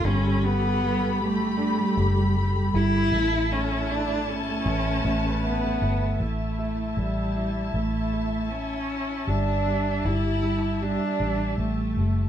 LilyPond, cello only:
\new Staff \with { instrumentName = "Cello" } { \time 4/4 \key a \mixolydian \tempo 4 = 78 cis'8 b4 a4. r8 e'8~ | e'8 cis'8 d'8 cis'4. b4 | a4 g4 a4 cis'4 | d'4 e'4 d'4 a4 | }